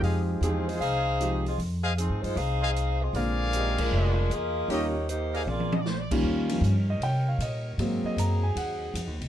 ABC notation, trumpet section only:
X:1
M:4/4
L:1/8
Q:"Swing" 1/4=155
K:Fm
V:1 name="Trumpet section"
[Acef]4- [Acef] z3 | z [Acef] z3 [Acef] z2 | [AB=df]4- [ABdf] z3 | [GBde] z2 [AB=df] z4 |
z8 | z8 |]